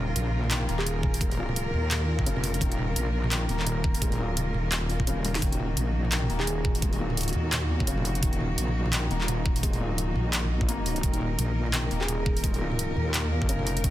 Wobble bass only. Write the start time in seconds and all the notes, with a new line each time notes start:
Already playing: D#1
0.16 A#1
0.69 D#1
1.74 D#2
2.26 F1
2.61 D#1
2.96 A#1
3.49 D#1
4.22 D1
4.55 D#1
5.07 D#1
5.42 D#1
5.77 A#1
6.30 D#1
7.03 D1
7.35 D#2
7.88 F1
8.23 D#1
8.58 A#1
9.11 D#1
9.84 D1
10.16 A#1
11.04 D#1
11.38 A#1
11.91 D#1
12.97 D#2
13.49 F1
13.84 D#1